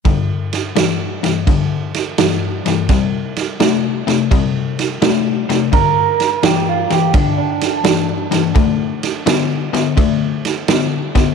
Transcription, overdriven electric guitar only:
X:1
M:4/4
L:1/8
Q:"Swing" 1/4=85
K:G
V:1 name="Overdriven electric guitar" clef=bass
[G,,D,]2 [G,,E,] [G,,E,] [G,,D,]2 [G,,E,] [G,,E,] | [C,G,]2 [C,A,] [C,A,] [C,G,]2 [C,A,] [C,A,] | [G,,D,]2 [G,,E,] [G,,E,] [G,,D,]2 [G,,E,] [G,,E,] | [D,A,]2 [D,B,] [D,B,] [D,A,]2 [D,B,] [D,B,] |]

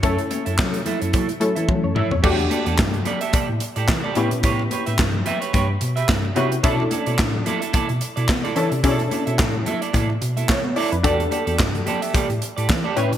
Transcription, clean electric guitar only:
X:1
M:4/4
L:1/16
Q:"Swing 16ths" 1/4=109
K:Edor
V:1 name="Clean electric guitar"
[EAc] z [EAc] [EAe] z2 [EAe] [EAc] [EAc] z2 [EAe] z2 [EAc] z | [GAd] z [GAd] [GAd] z2 [GAd] [GAe] [GAd] z2 [GAd] z [GAd] [GBc] z | [GBc] z [GBc] [GBe] z2 [GBe] [GBc] [GBc] z2 [GBe] z2 [GBc] z | [EAd] z [EAd] [EAd] z2 [EAd] [EAe] [EAd] z2 [EAd] z [EAd] [EAd] z |
[EAd] z [EAd] [EAe] z2 [EAe] [EAd] [EAd] z2 [EAe] z2 [EAd] z | [GAd] z [GAd] [GAd] z2 [GAd] [GAe] [GAd] z2 [GAd] z [GAd] [GBc] z |]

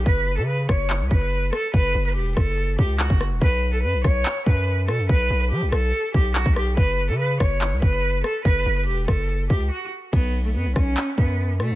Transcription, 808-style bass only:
X:1
M:4/4
L:1/16
Q:1/4=143
K:F#phr
V:1 name="808-style bass" clef=bass
F,,,3 C,3 F,,,3 C,, F,,,4 z2 | F,,,2 F,,,2 E,,,2 F,,,4 C,,3 F,,,2 E,,, | B,,,4 F,, B,,, B,,,2 z2 F,,4 B,, F,, | B,,,2 B,,,2 F, B,,, B,,,2 z2 B,,,3 B,,,3 |
F,,,3 C,3 F,,,3 C,, F,,,4 z2 | F,,,2 F,,,2 E,,,2 F,,,4 C,,2 z4 | B,,,4 F,, B,,, B,,,2 z2 F,,4 B,, F,, |]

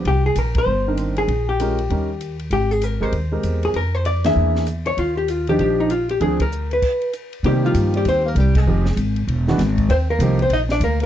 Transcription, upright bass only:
X:1
M:4/4
L:1/8
Q:"Swing" 1/4=195
K:Eb
V:1 name="Upright bass" clef=bass
C,,2 B,,,2 G,,,4 | B,,,4 E,,4 | A,,,3 =A,,, E,,2 _F,,2 | F,,4 =E,,4 |
E,,4 B,,,4 | D,,4 z4 | [K:Cm] C,2 G,,2 E,,2 C,,2 | F,,,2 A,,,2 =E,,,2 ^G,,,2 |
E,,2 C,,2 B,,,2 D,,2 |]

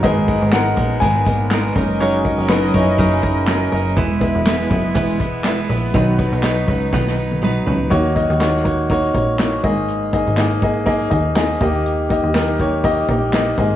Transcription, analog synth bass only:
X:1
M:4/4
L:1/16
Q:"Swing 16ths" 1/4=122
K:G#m
V:1 name="Analog synth bass" clef=bass
G,,,3 G,,,3 A,,,2 G,,,6 F,,,2- | F,,,3 F,,,3 F,,,2 F,,,6 F,,,2 | E,,,3 E,,,3 F,,,2 E,,,6 A,,,2 | B,,,3 B,,,3 C,,2 B,,,6 C,,2 |
D,,3 D,,6- D,, A,,,4 G,,,2- | G,,,3 G,,,6- G,,, D,,4 D,,2- | D,,3 D,,6- D,, A,,,4 G,,,2 |]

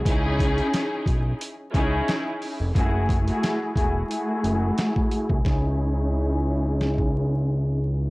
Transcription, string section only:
X:1
M:4/4
L:1/16
Q:"Swing 16ths" 1/4=89
K:C#m
V:1 name="String section"
[CDEG]8 z2 [CDEG]4- [CDEG] z | [A,EFG]3 [A,EFG]3 [A,EFG]2 [A,EFG]6- [A,EFG] z | [CDEG]16 |]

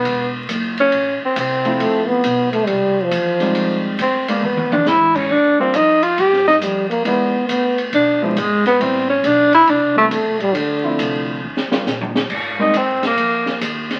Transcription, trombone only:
X:1
M:4/4
L:1/16
Q:"Swing" 1/4=137
K:Ephr
V:1 name="Trombone"
z16 | A,2 B,4 A,2 G,3 F,4- F,- | F,3 z12 z | z12 G,2 _B,2 |
B,4 B,3 z8 z | z12 A,2 G,2 | D,8 z8 | [K:Ab] z16 |]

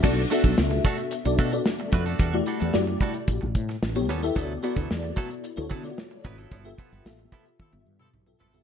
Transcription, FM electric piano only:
X:1
M:4/4
L:1/16
Q:1/4=111
K:Bm
V:1 name="FM electric piano"
[B,DFAd] z [B,DFAe]4 z3 [B,DFAd] z [B,DFAd]4 z | z [A,EFGd]2 z [A,EFGd]4 z4 z [B,EGAc] z [B,EGAe] | [B,EFAd] z [B,EFAd]4 z3 [B,EFAc] z [B,E^EFAd]4 z | z [B,=FGAe]2 z [B,FGAe]4- [B,FGAe] z4 [B,FGAe] z [B,FGAe] |]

